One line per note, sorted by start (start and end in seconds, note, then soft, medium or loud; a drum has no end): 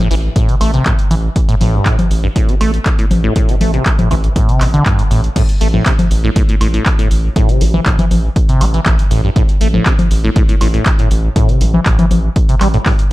0.11 0.29 A1 medium
0.11 0.15 E3 medium
0.11 open hi-hat medium
0.36 0.50 A2 medium
0.36 kick loud
0.36 closed hi-hat medium
0.49 0.55 C3 loud
0.49 closed hi-hat medium
0.61 0.79 A1 medium
0.61 0.71 A3 medium
0.61 open hi-hat loud
0.61 high woodblock medium
0.74 0.84 C3 medium
0.74 closed hi-hat soft
0.86 0.93 A2 medium
0.86 kick loud
0.86 clap loud
0.86 closed hi-hat medium
0.99 closed hi-hat medium
1.11 1.29 A1 loud
1.11 1.15 E3 loud
1.11 open hi-hat loud
1.36 kick loud
1.36 closed hi-hat medium
1.49 1.55 A2 loud
1.49 closed hi-hat soft
1.61 1.79 A1 loud
1.61 1.75 A2 medium
1.61 open hi-hat loud
1.61 low conga medium
1.74 1.87 G2 loud
1.86 1.96 A2 loud
1.86 kick loud
1.86 clap loud
1.86 closed hi-hat medium
1.99 closed hi-hat medium
1.99 low conga medium
2.11 2.29 A1 medium
2.11 open hi-hat loud
2.24 2.28 G2 medium
2.36 2.50 A2 medium
2.36 kick loud
2.36 closed hi-hat medium
2.49 2.55 C3 loud
2.49 closed hi-hat medium
2.61 2.79 A1 medium
2.61 2.71 A3 medium
2.61 open hi-hat loud
2.61 high woodblock medium
2.74 closed hi-hat soft
2.86 kick loud
2.86 clap loud
2.86 closed hi-hat medium
2.99 3.05 A2 medium
2.99 closed hi-hat medium
3.11 3.29 A1 loud
3.11 open hi-hat loud
3.11 low conga medium
3.24 3.34 A2 loud
3.36 kick loud
3.36 closed hi-hat medium
3.49 3.55 C3 loud
3.49 closed hi-hat soft
3.61 3.79 A1 loud
3.61 3.72 A3 medium
3.61 open hi-hat loud
3.61 low conga medium
3.74 3.84 C3 medium
3.74 closed hi-hat soft
3.86 kick loud
3.86 clap loud
3.86 closed hi-hat medium
3.99 4.09 A2 medium
3.99 closed hi-hat medium
3.99 low conga medium
4.11 4.29 A1 loud
4.11 4.15 E3 loud
4.11 kick medium
4.11 open hi-hat loud
4.11 high woodblock medium
4.24 closed hi-hat soft
4.36 4.50 A2 medium
4.36 kick loud
4.36 closed hi-hat medium
4.49 4.62 C3 loud
4.49 closed hi-hat medium
4.61 4.79 A1 medium
4.61 4.68 B2 medium
4.61 clap medium
4.61 open hi-hat loud
4.61 high woodblock medium
4.74 4.84 D3 loud
4.74 closed hi-hat soft
4.86 5.00 G2 medium
4.86 kick loud
4.86 clap loud
4.86 closed hi-hat medium
4.99 5.03 A2 medium
4.99 closed hi-hat medium
5.11 5.29 A1 medium
5.11 5.22 A2 medium
5.11 open hi-hat loud
5.24 closed hi-hat soft
5.36 5.43 A2 loud
5.36 kick loud
5.36 closed hi-hat medium
5.36 crash loud
5.49 closed hi-hat soft
5.61 5.79 A1 loud
5.61 5.68 A3 medium
5.61 open hi-hat loud
5.74 5.84 A2 medium
5.74 low conga medium
5.86 5.93 C3 medium
5.86 kick loud
5.86 clap loud
5.86 closed hi-hat medium
5.99 closed hi-hat medium
5.99 low conga loud
6.11 6.29 A1 medium
6.11 open hi-hat loud
6.24 6.30 A2 loud
6.36 6.43 A2 loud
6.36 kick loud
6.36 closed hi-hat medium
6.49 6.56 A2 medium
6.49 closed hi-hat medium
6.61 6.79 A1 loud
6.61 6.68 A2 medium
6.61 open hi-hat loud
6.61 high woodblock medium
6.74 6.84 A2 medium
6.74 closed hi-hat soft
6.86 kick loud
6.86 clap loud
6.86 closed hi-hat medium
6.99 7.09 A2 medium
6.99 closed hi-hat medium
7.11 7.29 A1 loud
7.11 open hi-hat loud
7.36 7.50 A2 loud
7.36 kick loud
7.36 closed hi-hat medium
7.49 7.63 C3 medium
7.49 closed hi-hat soft
7.61 7.79 A1 loud
7.61 7.65 A3 medium
7.61 open hi-hat loud
7.74 7.81 E3 medium
7.74 low conga medium
7.86 7.97 A1 medium
7.86 kick loud
7.86 clap loud
7.86 closed hi-hat medium
7.99 8.06 E3 medium
7.99 closed hi-hat medium
7.99 low conga medium
8.11 8.29 A1 medium
8.11 open hi-hat loud
8.11 low conga medium
8.36 kick loud
8.36 closed hi-hat medium
8.49 8.63 C3 medium
8.49 closed hi-hat soft
8.61 8.79 A1 loud
8.61 8.65 A3 medium
8.61 open hi-hat loud
8.61 high woodblock medium
8.74 8.81 E3 medium
8.74 closed hi-hat soft
8.86 8.97 A1 medium
8.86 kick loud
8.86 clap loud
8.86 closed hi-hat medium
8.99 closed hi-hat medium
9.11 9.29 A1 loud
9.11 9.22 A2 medium
9.11 open hi-hat loud
9.24 9.31 G2 medium
9.36 9.43 A2 loud
9.36 kick loud
9.36 closed hi-hat medium
9.49 closed hi-hat soft
9.61 9.79 A1 loud
9.61 9.68 A3 medium
9.61 open hi-hat loud
9.74 9.84 A2 medium
9.74 low conga medium
9.86 9.93 C3 medium
9.86 kick loud
9.86 clap loud
9.86 closed hi-hat medium
9.99 closed hi-hat medium
9.99 low conga loud
10.11 10.29 A1 medium
10.11 open hi-hat loud
10.24 10.31 A2 loud
10.36 10.43 A2 loud
10.36 kick loud
10.36 closed hi-hat medium
10.49 10.56 A2 medium
10.49 closed hi-hat medium
10.61 10.79 A1 loud
10.61 10.68 A2 medium
10.61 open hi-hat loud
10.61 high woodblock medium
10.74 10.84 A2 medium
10.74 closed hi-hat soft
10.86 kick loud
10.86 clap loud
10.86 closed hi-hat medium
10.99 11.09 A2 medium
10.99 closed hi-hat medium
11.11 11.29 A1 loud
11.11 open hi-hat loud
11.36 11.50 A2 loud
11.36 kick loud
11.36 closed hi-hat medium
11.49 11.63 C3 medium
11.49 closed hi-hat soft
11.61 11.79 A1 loud
11.61 11.65 A3 medium
11.61 open hi-hat loud
11.74 11.81 E3 medium
11.74 low conga medium
11.86 11.97 A1 medium
11.86 kick loud
11.86 clap loud
11.86 closed hi-hat medium
11.99 12.06 E3 medium
11.99 closed hi-hat medium
11.99 low conga loud
12.11 12.29 A1 medium
12.11 open hi-hat loud
12.11 low conga medium
12.36 kick loud
12.36 closed hi-hat medium
12.49 12.56 C3 medium
12.49 closed hi-hat soft
12.61 12.79 A1 medium
12.61 12.68 G3 loud
12.61 clap medium
12.61 open hi-hat loud
12.61 high woodblock medium
12.74 12.78 A2 loud
12.74 closed hi-hat soft
12.86 12.93 A2 medium
12.86 kick loud
12.86 clap loud
12.86 open hi-hat medium
12.99 closed hi-hat medium